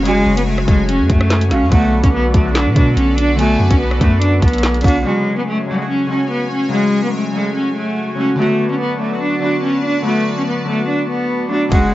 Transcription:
Already playing: F#1 C#3 F#3 G#3 A3 C#4 F#4 C#5 G#5
0.02 C#3 F#3 G#3 G#5, closed hi-hat
0.07 C#4 F#4
0.26 F#1
0.37 B3, closed hi-hat
0.47 A3
0.58 cross-stick
0.65 F#1 C#3 F#3 G#3 G#4, kick, closed hi-hat
0.69 A3 A4
0.89 C#4, closed hi-hat
1.00 F#2
1.09 F#2 A3, kick, closed hi-hat
1.21 cross-stick
1.30 snare, clap, closed hi-hat
1.41 closed hi-hat
1.48 A1 C#3 F#3 G#3 C#4 F5, snare, closed hi-hat
1.53 A3 F#4
1.62 F#2
1.69 B1 D3 F#3 A3 F#4 A4 B4 D5 F#5, kick, closed hi-hat
1.73 B3 F#4
2.04 B1 C#4, kick, closed hi-hat
2.14 B3
2.32 B1 D3 F#3 A3, kick, closed hi-hat
2.36 B3 F#4
2.43 D3 F#3 A3
2.47 B3 F#4
2.55 D4, snare, clap, closed hi-hat
2.66 B2
2.73 B2 D3 F#3 A3 D4, kick, closed hi-hat
2.78 B3 F#4
2.97 B1 C#4, closed hi-hat
3.18 D4, closed hi-hat
3.36 D3 F#3 A3 G#5, closed hi-hat
3.40 B3 F#4
3.59 F#2
3.70 B1 C#4, kick, closed hi-hat
3.80 B3
3.91 cross-stick
3.98 F#2 D3 F#3 A3, kick, closed hi-hat
4.03 B3 F#4
4.22 D4, closed hi-hat
4.43 B1 B3, kick, closed hi-hat
4.48 closed hi-hat
4.54 closed hi-hat
4.59 closed hi-hat
4.64 snare, clap, closed hi-hat
4.75 closed hi-hat
4.81 B1 D3 F#3 A3 D4 F#5, kick, closed hi-hat, open hi-hat
4.86 B3 F#4, closed hi-hat
5.02 C#3 F#3 G#3 F#4 C#5 G#5
5.07 C#4 F#4
5.37 B3
5.47 A3
5.65 C#3 F#3 G#3
5.69 A3 F#4
5.76 C#3 F#3 G#3
5.80 A3 F#4
5.89 C#4
6.07 C#3 F#3 G#3 C#4
6.11 A3 F#4
6.31 B3
6.51 C#4
6.69 C#3 F#3 G#3
6.73 C#4 F#4
7.04 B3
7.14 A3
7.32 C#3 F#3 G#3 G#4
7.36 A3 A4
7.56 C#4
7.76 A3
8.15 C#3 F#3 G#3 C#4
8.19 A3 F#4
8.36 D3 F#3 A3 B4 D5 A5
8.40 B3 F#4
8.71 C#4
8.80 B3
8.98 D3 F#3 A3
9.03 B3 F#4
9.09 D3 F#3 A3
9.13 B3 F#4
9.22 D4
9.40 D3 F#3 A3 D4
9.44 B3 F#4
9.64 C#4
9.84 D4
10.03 D3 F#3 A3
10.07 B3 F#4
10.37 C#4
10.47 B3
10.65 D3 F#3 A3
10.69 B3 F#4
10.88 D4
11.10 B3
11.48 D3 F#3 A3 D4
11.52 B3 F#4
11.69 F#1 C#3 F#3 G#3 C#5 F#5 G#5, kick, closed hi-hat
11.73 C#4 F#4

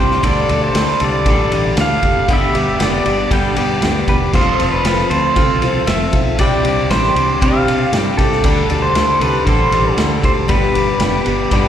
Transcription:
Already playing: C2 G3 C4 D4 G4
0.00 C4 D4 C5
0.11 snare
0.23 D2 D3 G3 D4 A4, kick, ride
0.27 D5
0.49 D2 G3 D4 A4, ride
0.64 C5
0.75 D2 D3 G3 D4 A4, snare, ride
0.89 snare
1.00 C2 G3 D4 A4, ride
1.04 D5
1.25 A1 D3 G3 D4 A4, kick, ride
1.51 A1 G3 D4 A4, ride
1.77 D2 D3 G3 D4 A4, snare, ride
1.81 F5
2.02 F1 G3 D4 A4, kick, ride
2.28 G1 G2 D3 G3 B3 D4 G4, kick, ride
2.33 E5
2.53 G1 G3 B3 D4 G4, ride
2.79 F1 G3 B3 D4 G4 D5, snare, ride
3.06 G1 G3 B3 D4 G4, ride
3.31 G2 D3 G3 B3 D4 G4 G5, kick, ride
3.56 G2 G3 B3 D4 G4, ride
3.82 D2 G3 B3 D4 G4, snare, ride
4.08 E1 G3 B3 D4 G4 B4, kick, ride
4.33 F1 F3 C4 F4 A4 C5, kick, crash
4.59 F1 C4 F4 A4, ride
4.72 B4
4.84 F1 F3 C4 F4 A4, snare, ride
4.98 snare
5.10 D2 C4 F4 A4 C5, ride
5.36 C2 F3 C4 F4 A4, kick, ride
5.62 C2 C4 F4 A4, ride
5.87 F1 F3 C4 F4 A4 E5, snare, ride
6.13 B1 C4 F4 A4, kick, ride
6.39 C2 C3 G3 C4 D4 G4 D5, kick, ride
6.65 C2 C4 D4 G4, ride
6.90 A1 G3 C4 D4 G4 C5, snare, ride
7.05 snare
7.15 C2 C4 D4 G4, ride
7.41 C3 G3 C4 D4 G4 F5, kick, ride
7.68 C3 C4 D4 G4, ride
7.93 G2 G3 C4 D4 G4, snare, ride
8.18 C2 C4 D4 G4 A4, kick, ride
8.32 snare
8.44 D2 D3 G3 D4 A4, kick, ride
8.69 D2 G3 D4 A4, ride
8.82 C5
8.94 D2 D3 G3 D4 A4, snare, ride
9.20 C2 G3 D4 A4 B4, ride
9.47 A1 D3 G3 D4 A4 C5, kick, ride
9.71 A1 G3 D4 A4, ride
9.97 D2 D3 G3 D4 A4, snare, ride
10.22 D2 G3 D4 A4 C5, kick, ride
10.48 G1 G2 D3 G3 B3 D4 G4 B4, kick, ride
10.73 G1 G3 B3 D4 G4, ride
10.99 F1 G3 B3 D4 G4, snare, ride
11.25 G1 G3 B3 D4 G4, ride
11.51 G2 D3 G3 B3 D4 G4, kick, ride

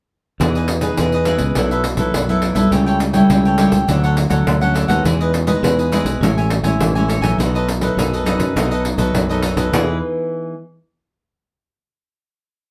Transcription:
0.40 E2 E3 B3 D#4 E4 G#4 B4 D#5, pandeiro
0.55 G#4 B4 D#5, pandeiro
0.68 muted cavaquinho stroke, pandeiro
0.81 B3 D#4 G#4 B4 D#5, pandeiro
0.97 E2 B2 E4 G#4 B4 D#5, pandeiro
1.12 G#4 B4 D#5, pandeiro
1.25 B3 D#4 E4 G#4 B4 D#5, pandeiro
1.39 C#2, pandeiro
1.55 B1 B2 F#3 A3 E4 A4 B4 E5, pandeiro
1.71 A4 B4 E5, pandeiro
1.84 muted cavaquinho stroke, pandeiro
1.97 B1 F#3 A3 E4 A4 B4 E5, pandeiro
2.14 B1 F#2, pandeiro
2.29 F#3 A3 E4 A4 B4 E5, pandeiro
2.42 E4 A4 B4 E5, pandeiro
2.55 B1 G3 A3 E4 A4 B4 E5, pandeiro
2.71 C#2 C#3 G4 A4 C#5 G5, pandeiro
2.86 A4 C#5 G5, pandeiro
2.99 muted cavaquinho stroke, pandeiro
3.13 G3 A3 E4 A4 C#5 G5, pandeiro
3.30 C#2 C#3 G4 A4 C#5 G5, pandeiro
3.45 A4 C#5 G5, pandeiro
3.58 G3 A3 E4 G4 A4 C#5 G5, pandeiro
3.72 C#2, pandeiro
3.88 D2 D3 F#3 A3 C#4 D4 A4 C#5 F#5, pandeiro
4.03 A4 C#5 F#5, pandeiro
4.16 muted cavaquinho stroke, pandeiro
4.29 D2 F#3 A3 C#4 A4 C#5 F#5, pandeiro
4.46 D2 A2, pandeiro
4.61 F#3 A3 C#4 A4 C#5 F#5, pandeiro
4.74 D4 A4 C#5 F#5, pandeiro
4.88 D#2 G#3 B3 D#4 A4 C#5 F#5, pandeiro
5.05 E2 E3 E4 G#4 B4 D#5, pandeiro
5.21 G#4 B4 D#5, pandeiro
5.33 muted cavaquinho stroke, pandeiro
5.47 G#3 B3 D#4 G#4 B4 D#5, pandeiro
5.63 E2 B2 E4 G#4 B4 D#5, pandeiro
5.79 G#4 B4 D#5, pandeiro
5.92 G#3 B3 D#4 E4 G#4 B4 D#5, pandeiro
6.05 B1, pandeiro
6.21 A1 A2 G#3 C#4 E4 A4 C#5 E5 G#5, pandeiro
6.38 C#5 E5 G#5, pandeiro
6.50 muted cavaquinho stroke, pandeiro
6.63 A1 G#3 C#4 E4 C#5 E5 G#5, pandeiro
6.79 A1 E3, pandeiro
6.95 G#3 C#4 E4 C#5 E5 G#5, pandeiro
7.08 A4 C#5 E5 G#5, pandeiro
7.21 A#1 F#3 A3 D#4 C#5 E5 G#5, pandeiro
7.38 B1 B2 D#4 A4 B4 D#5, pandeiro
7.55 A4 B4 D#5, pandeiro
7.68 muted cavaquinho stroke, pandeiro
7.81 F#3 A3 D#4 A4 B4 D#5, pandeiro
7.97 B1 F#2 D#4 A4 B4 D#5, pandeiro
8.13 A4 B4 D#5, pandeiro
8.26 F#3 A3 D#4 A4 B4 D#5, pandeiro
8.39 F#2, pandeiro
8.56 B1 B2 F#3 A3 D#4 A4 B4 D#5, pandeiro
8.71 A4 B4 D#5, pandeiro
8.85 muted cavaquinho stroke, pandeiro
8.98 B1 F#3 A3 D#4 A4 B4 D#5, pandeiro
9.14 B1 F#2, pandeiro
9.29 F#3 A3 D#4 A4 B4 D#5, pandeiro
9.43 D#4 A4 B4 D#5, pandeiro
9.57 B1 A4 B4 D#5, pandeiro
9.72 E2 E3 B3 D#4 E4 G#4 B4 D#5, pandeiro

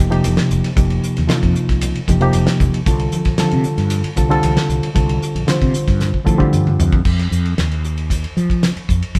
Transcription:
Already playing: F1
0.00 G4
0.10 C3 F3 A#3 D#4 G4, ride
0.24 F1, hi-hat pedal, ride, high conga
0.37 snare, ride
0.50 F1, hi-hat pedal, muted conga
0.64 snare, ride
0.76 F1 C3 F3 A#3 D#4 G4, kick, hi-hat pedal, ride, muted conga
0.90 ride
1.03 hi-hat pedal
1.17 D#2, snare, ride
1.27 C3 F3 A#3 D#4 F4, snare, hi-hat pedal, ride, high conga
1.43 F2, kick, ride
1.55 muted fretless electric bass stroke, hi-hat pedal
1.69 C2, kick, snare, ride
1.81 hi-hat pedal, ride, muted conga, low conga
1.95 ride
2.08 F1 C3 F3 A#3 D#4 G4, kick, snare, hi-hat pedal, muted conga, high conga
2.21 C3 F3 A#3 D#4 G4, ride
2.33 F1, hi-hat pedal, ride
2.47 snare, ride
2.60 F1, kick, hi-hat pedal, muted conga, high conga
2.74 ride
2.86 C2 D3 G3 C4 F4 A4, kick, hi-hat pedal, ride
2.99 ride
3.12 hi-hat pedal, high conga
3.25 A#1, kick, snare, ride
3.38 D3 G3 C4 F4 A4, muted fretless electric bass stroke, snare, hi-hat pedal, ride, high conga
3.51 C3, ride
3.64 muted fretless electric bass stroke, hi-hat pedal
3.78 G2, snare, ride
3.90 hi-hat pedal, ride, muted conga
4.04 muted fretless electric bass stroke, ride
4.16 C2 D3 G3 C4 F4 A4, kick, hi-hat pedal, muted conga
4.29 D3 G3 C4 F4 A4, ride
4.43 C2, hi-hat pedal, ride, high conga
4.57 snare, ride
4.69 C2, hi-hat pedal, muted conga
4.83 muted fretless electric bass stroke, ride
4.94 C2 D3 G3 C4 F4 A4, kick, hi-hat pedal, ride
5.09 ride
5.22 hi-hat pedal
5.35 A#1, ride
5.47 D3 G3 C4 F4 C5, snare, hi-hat pedal, ride, high conga
5.62 C3, kick, ride
5.74 muted fretless electric bass stroke, hi-hat pedal
5.88 G2, kick, snare, ride
6.00 snare, hi-hat pedal, muted conga, low conga
6.14 kick
6.24 A2 D3 G3 C4 F4 A4, kick, hi-hat pedal, muted conga, high conga
6.38 D3 G3 C4 F4 G4, kick
6.53 G2, hi-hat pedal, mid tom, high conga
6.67 mid tom, high conga
6.80 F2, floor tom, hi-hat pedal, low conga
6.92 kick, low conga
7.05 F2, kick, crash
7.19 snare, ride
7.31 F2, hi-hat pedal
7.45 ride
7.58 D#2, snare, hi-hat pedal, ride
7.71 ride
7.84 hi-hat pedal
7.98 ride
8.10 kick, hi-hat pedal, ride
8.24 ride
8.37 F3, hi-hat pedal
8.50 kick, ride
8.63 snare, hi-hat pedal, ride
8.76 muted fretless electric bass stroke, ride
8.89 F2, kick, hi-hat pedal
9.02 ride
9.15 F2, kick, hi-hat pedal, ride

